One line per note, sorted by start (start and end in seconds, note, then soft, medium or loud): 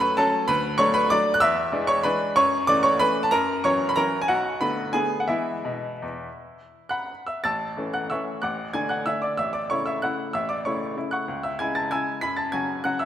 0.00 0.19 F#2 medium
0.00 0.14 F#3 medium
0.00 0.15 A3 medium
0.00 0.15 C#4 medium
0.00 0.16 B4 medium
0.00 0.20 C#5 medium
0.00 0.17 B5 loud
0.00 0.19 C#6 loud
0.17 0.45 F#3 medium
0.17 0.45 A3 medium
0.17 0.46 C#4 medium
0.17 0.46 A4 medium
0.17 0.48 A5 loud
0.48 0.78 D2 medium
0.48 0.77 B4 medium
0.48 0.78 B5 loud
0.78 1.07 F#3 medium
0.78 1.07 A3 medium
0.78 1.08 D4 medium
0.78 0.93 C#5 medium
0.78 0.94 C#6 loud
0.94 1.09 B4 medium
0.94 1.10 B5 loud
1.10 1.39 F#3 medium
1.10 1.39 A3 medium
1.10 1.39 D4 medium
1.10 1.33 D5 medium
1.10 1.34 D6 loud
1.34 1.41 F#6 loud
1.40 1.71 E2 medium
1.40 1.84 E5 medium
1.40 1.87 E6 loud
1.72 2.01 E3 medium
1.72 2.01 G#3 medium
1.72 2.01 D4 medium
1.87 2.03 C#5 medium
1.87 2.04 C#6 loud
2.03 2.33 E3 medium
2.03 2.33 G#3 medium
2.03 2.33 D4 medium
2.03 2.34 B4 medium
2.03 2.36 B5 loud
2.36 2.67 F#2 medium
2.36 2.66 C#5 medium
2.36 2.68 C#6 loud
2.67 2.97 E3 medium
2.67 2.97 A3 medium
2.67 2.98 C#4 medium
2.67 2.83 D5 medium
2.67 2.84 D6 loud
2.83 2.99 C#5 medium
2.83 3.00 C#6 loud
2.99 3.29 E3 medium
2.99 3.29 A3 medium
2.99 3.30 C#4 medium
2.99 3.23 B4 medium
2.99 3.24 B5 loud
3.23 3.32 A5 loud
3.31 3.63 F#2 medium
3.31 3.62 A#4 medium
3.31 3.64 A#5 loud
3.64 3.94 E3 medium
3.64 3.94 F#3 medium
3.64 3.94 C#4 medium
3.64 3.87 C#5 medium
3.64 3.88 C#6 loud
3.89 3.97 B5 loud
3.96 4.26 E3 medium
3.96 4.26 F#3 medium
3.96 4.26 C#4 medium
3.96 4.19 A#4 medium
3.96 4.20 A#5 loud
4.22 4.29 G#5 medium
4.28 4.60 B1 medium
4.28 4.59 F#4 medium
4.28 4.60 F#5 medium
4.61 4.91 D3 medium
4.61 4.91 A3 medium
4.61 4.91 B3 medium
4.61 4.92 B4 medium
4.61 4.94 B5 medium
4.93 5.25 D3 medium
4.93 5.26 A3 medium
4.93 5.26 B3 medium
4.93 5.18 G#4 medium
4.93 5.20 G#5 loud
5.20 5.29 F#5 medium
5.28 5.54 E3 medium
5.28 5.58 G#3 soft
5.28 5.58 B3 soft
5.28 7.05 E4 medium
5.28 7.09 E5 medium
5.65 5.91 B2 medium
6.02 6.27 E2 medium
6.89 7.25 F#5 medium
6.89 7.25 B5 medium
6.89 7.27 F#6 medium
7.27 7.44 E5 soft
7.27 7.43 E6 medium
7.44 7.77 A1 medium
7.44 7.91 A5 medium
7.44 7.91 E6 medium
7.44 7.94 A6 medium
7.77 8.07 E3 soft
7.77 8.07 A3 soft
7.77 8.08 C#4 soft
7.94 8.09 F#5 medium
7.94 8.10 F#6 medium
8.10 8.40 E3 soft
8.10 8.40 A3 soft
8.10 8.40 C#4 soft
8.10 8.41 E5 soft
8.10 8.41 C#6 soft
8.10 8.42 E6 medium
8.42 8.73 A1 medium
8.42 8.72 F#5 medium
8.42 8.72 D6 medium
8.42 8.74 F#6 medium
8.74 9.03 D3 soft
8.74 9.03 A3 soft
8.74 9.04 D4 soft
8.74 8.89 G#5 medium
8.74 8.90 G#6 medium
8.89 9.05 F#5 medium
8.89 9.06 F#6 medium
9.06 9.35 D3 soft
9.06 9.35 A3 soft
9.06 9.35 D4 soft
9.06 9.22 E5 medium
9.06 9.22 E6 medium
9.22 9.37 D5 medium
9.22 9.38 D6 medium
9.37 9.69 A1 medium
9.37 9.53 E5 medium
9.37 9.53 E6 medium
9.53 9.69 D5 medium
9.53 9.69 D6 medium
9.70 9.99 C#3 soft
9.70 9.99 A3 soft
9.70 10.00 E4 soft
9.70 9.85 C#5 medium
9.70 9.86 C#6 medium
9.86 10.02 E5 medium
9.86 10.02 E6 medium
10.02 10.31 C#3 soft
10.02 10.31 A3 soft
10.02 10.31 E4 soft
10.02 10.32 F#5 medium
10.02 10.33 F#6 medium
10.33 10.64 A1 medium
10.33 10.48 E5 medium
10.33 10.48 E6 medium
10.49 10.64 D5 medium
10.49 10.64 D6 medium
10.65 10.94 C#3 soft
10.65 10.94 A3 soft
10.65 10.94 E4 soft
10.65 10.80 C#5 soft
10.65 10.81 C#6 medium
10.97 11.24 C#3 soft
10.97 11.25 A3 soft
10.97 11.25 E4 soft
11.11 11.41 F#5 medium
11.11 11.41 C#6 medium
11.11 11.42 F#6 medium
11.28 11.58 C#2 medium
11.43 11.58 E5 soft
11.43 11.59 E6 medium
11.59 11.88 C#3 soft
11.59 11.89 G#3 soft
11.59 11.89 E4 soft
11.59 11.75 G#5 medium
11.59 11.75 G#6 medium
11.75 11.91 A5 medium
11.75 11.91 A6 medium
11.91 12.20 C#3 soft
11.91 12.20 G#3 soft
11.91 12.20 E4 soft
11.91 12.20 G#5 medium
11.91 12.20 E6 medium
11.91 12.22 G#6 medium
12.21 12.52 F#2 medium
12.21 12.36 B5 medium
12.21 12.37 B6 medium
12.37 12.52 A5 medium
12.37 12.52 A6 medium
12.52 12.82 C#3 soft
12.52 12.82 F#3 soft
12.52 12.82 F#4 soft
12.52 12.83 G#5 medium
12.52 12.84 G#6 medium
12.84 13.05 C#3 soft
12.84 13.05 F#3 soft
12.84 13.05 F#4 soft
12.84 12.99 F#5 medium
12.84 13.00 F#6 medium
12.99 13.05 E5 medium
12.99 13.05 E6 medium